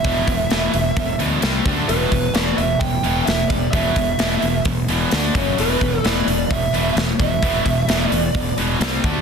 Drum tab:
HH |oooooooo|oooooooo|oooooooo|oooooooo|
SD |--o---o-|--o---o-|--o---o-|--o---o-|
BD |oo--o--o|-o--o--o|oo--o--o|-o--o--o|

HH |oooooooo|
SD |--o---o-|
BD |oo--o--o|